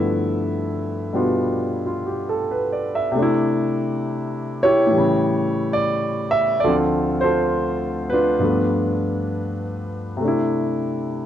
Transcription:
0.00 3.15 G2 soft
0.00 3.15 D3 soft
0.00 3.15 F3 soft
0.00 3.14 A3 soft
0.00 1.13 B3 soft
0.00 3.16 E4 soft
0.00 2.28 A4 soft
0.00 2.50 B4 medium
0.00 2.83 E5 medium
1.12 3.15 B2 soft
1.12 3.15 G3 soft
1.12 3.16 B3 soft
1.12 3.16 D4 soft
1.12 1.85 F4 soft
1.86 2.12 F4 soft
2.06 2.37 G4 soft
2.29 2.70 A4 soft
2.51 2.88 B4 soft
2.73 2.99 D5 soft
2.95 3.25 E5 medium
3.12 4.88 C3 medium
3.12 4.90 A3 soft
3.19 4.92 D4 soft
3.19 4.63 E4 medium
4.63 6.33 E4 medium
4.63 6.33 G4 medium
4.63 5.80 C#5 medium
4.87 6.62 A2 soft
4.87 6.64 E3 soft
4.94 6.68 C#3 medium
4.94 6.66 G3 soft
5.73 6.31 D5 medium
6.31 6.38 E5 medium
6.60 8.40 D2 soft
6.60 6.74 D5 medium
6.64 8.41 D3 soft
6.64 8.39 F3 soft
6.64 7.23 F4 medium
6.64 7.23 A4 medium
6.68 8.43 C4 soft
7.21 8.12 F4 soft
7.21 8.36 A4 medium
7.21 8.13 C5 medium
8.10 9.89 D4 soft
8.10 9.89 F4 soft
8.10 9.25 B4 medium
8.39 10.20 G2 soft
8.39 10.21 F3 soft
8.39 10.19 A3 soft
8.44 10.22 B3 soft
10.17 11.26 C3 soft
10.17 11.26 A3 soft
10.24 11.26 D4 soft
10.24 11.26 E4 medium

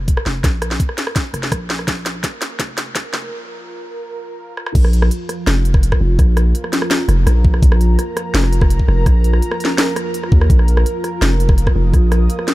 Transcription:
0.00 0.16 F1 medium
0.00 4.74 F3 medium
0.00 4.75 F4 medium
0.00 4.75 A#4 medium
0.00 4.75 A#5 medium
0.08 kick loud
0.08 closed hi-hat medium
0.17 cross-stick medium
0.26 0.42 F1 loud
0.26 snare medium
0.44 0.79 A#1 loud
0.44 kick loud
0.44 cross-stick soft
0.44 snare medium
0.44 closed hi-hat medium
0.62 cross-stick medium
0.62 closed hi-hat medium
0.71 snare medium
0.80 kick medium
0.80 closed hi-hat medium
0.89 cross-stick medium
0.98 snare medium
0.98 closed hi-hat medium
1.07 cross-stick medium
1.16 kick loud
1.16 snare medium
1.16 closed hi-hat medium
1.33 1.50 F1 medium
1.33 cross-stick soft
1.33 closed hi-hat medium
1.43 snare medium
1.52 1.86 A#1 medium
1.52 kick loud
1.52 cross-stick medium
1.52 closed hi-hat medium
1.70 snare medium
1.79 cross-stick soft
1.88 2.22 A#1 medium
1.88 kick loud
1.88 snare medium
1.88 closed hi-hat medium
2.06 snare medium
2.06 closed hi-hat medium
2.24 kick loud
2.24 snare medium
2.24 closed hi-hat medium
2.42 snare medium
2.42 closed hi-hat medium
2.59 3.03 F1 medium
2.59 kick loud
2.59 snare medium
2.59 closed hi-hat medium
2.78 snare medium
2.78 closed hi-hat medium
2.95 kick loud
2.95 snare medium
2.95 closed hi-hat medium
3.13 3.30 F1 loud
3.13 snare medium
4.57 cross-stick medium
4.66 cross-stick medium
4.75 5.10 A#1 loud
4.75 12.54 F3 medium
4.75 kick loud
4.75 closed hi-hat medium
4.75 crash loud
4.80 12.54 F4 medium
4.85 cross-stick medium
4.93 closed hi-hat medium
5.02 cross-stick medium
5.11 closed hi-hat medium
5.29 cross-stick medium
5.29 closed hi-hat medium
5.36 12.54 A#4 medium
5.47 5.91 F1 medium
5.47 cross-stick medium
5.47 snare loud
5.47 closed hi-hat medium
5.65 11.43 A#5 medium
5.65 closed hi-hat medium
5.74 kick loud
5.74 cross-stick medium
5.83 closed hi-hat medium
5.92 kick medium
5.92 cross-stick medium
6.01 6.17 F1 loud
6.19 6.54 A#1 loud
6.19 kick loud
6.19 cross-stick medium
6.19 closed hi-hat medium
6.37 cross-stick medium
6.37 closed hi-hat medium
6.55 closed hi-hat medium
6.64 cross-stick medium
6.73 snare medium
6.73 closed hi-hat medium
6.82 cross-stick medium
6.91 snare loud
6.91 closed hi-hat medium
7.08 7.25 F1 loud
7.08 cross-stick medium
7.08 closed hi-hat medium
7.26 7.61 A#1 medium
7.26 cross-stick medium
7.26 closed hi-hat medium
7.45 kick loud
7.54 cross-stick medium
7.62 7.97 A#1 loud
7.62 kick loud
7.62 closed hi-hat medium
7.72 cross-stick medium
7.81 closed hi-hat medium
7.99 cross-stick medium
7.99 closed hi-hat medium
8.17 cross-stick medium
8.17 closed hi-hat medium
8.34 8.78 F1 medium
8.34 snare loud
8.34 closed hi-hat medium
8.44 cross-stick soft
8.53 closed hi-hat medium
8.62 kick loud
8.62 cross-stick medium
8.70 closed hi-hat medium
8.79 kick medium
8.88 9.05 F1 loud
8.88 cross-stick soft
9.06 9.41 A#1 loud
9.06 kick loud
9.06 cross-stick medium
9.06 closed hi-hat medium
9.24 closed hi-hat medium
9.33 cross-stick medium
9.42 closed hi-hat medium
9.51 cross-stick medium
9.60 closed hi-hat medium
9.65 snare medium
9.78 cross-stick soft
9.78 snare loud
9.78 closed hi-hat medium
9.96 cross-stick medium
9.96 closed hi-hat medium
10.14 closed hi-hat medium
10.23 cross-stick soft
10.32 10.49 D#2 medium
10.32 kick loud
10.41 cross-stick medium
10.50 10.85 A#1 loud
10.50 kick loud
10.50 closed hi-hat medium
10.59 cross-stick medium
10.68 closed hi-hat medium
10.77 cross-stick medium
10.86 closed hi-hat medium
11.04 cross-stick soft
11.04 closed hi-hat medium
11.22 11.66 F1 medium
11.22 cross-stick medium
11.22 snare loud
11.22 closed hi-hat medium
11.40 12.54 D#6 medium
11.40 closed hi-hat medium
11.49 kick loud
11.49 cross-stick soft
11.58 closed hi-hat medium
11.67 kick medium
11.67 cross-stick medium
11.76 11.92 F1 loud
11.94 12.28 A#1 loud
11.94 kick loud
11.94 cross-stick medium
11.94 closed hi-hat medium
12.12 cross-stick medium
12.12 closed hi-hat medium
12.30 closed hi-hat medium
12.39 cross-stick medium
12.48 snare medium
12.48 closed hi-hat medium

